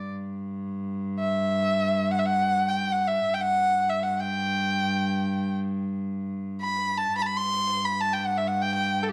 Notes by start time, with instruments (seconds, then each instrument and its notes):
Already playing: cello G2, kamancheh D5
1.19 kamancheh E5
2.11 kamancheh F#5
2.19 kamancheh E5
2.25 kamancheh F#5
2.68 kamancheh G5
2.92 kamancheh F#5
3.07 kamancheh E5
3.27 cello G2
3.34 kamancheh G5
3.41 kamancheh F#5
3.89 kamancheh E5
4.03 kamancheh F#5
4.20 kamancheh G5
6.61 kamancheh B5
6.97 kamancheh A5
7.13 cello G2
7.17 kamancheh B5
7.22 kamancheh A5 B5
7.37 kamancheh C6
7.85 kamancheh B5
8.01 kamancheh A5
8.13 kamancheh G5
8.27 kamancheh F#5
8.37 kamancheh E5
8.47 kamancheh F#5
8.62 kamancheh G5
8.75 kamancheh G5
9.03 kamancheh A4
9.09 kamancheh G4